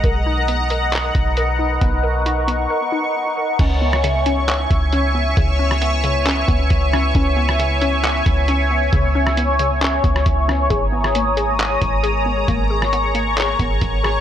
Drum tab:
CC |----------------|----------------|x---------------|----------------|
HH |x---x-x-x-x-x---|x---x-x---------|x---x-x-x-x-x---|x---x-x-x-x-x---|
CP |--------x-------|----------------|--------x-------|--------x-------|
SD |----------------|----------------|---r------------|---r----------r-|
BD |o---------o-----|o---------------|o---------o-----|o---------o-o---|

CC |----------------|----------------|----------------|----------------|
HH |x---x-x-x-x-x---|x---x-x-x-x-x---|x---x-x-x-x-x---|x---x-x-x-x-x---|
CP |--------x-------|--------x-------|--------x-------|--------x-------|
SD |---r------------|---r-------r--r-|---r------------|---r----------r-|
BD |o---------o-----|o---------o-o---|o---------o-----|o---------o-o---|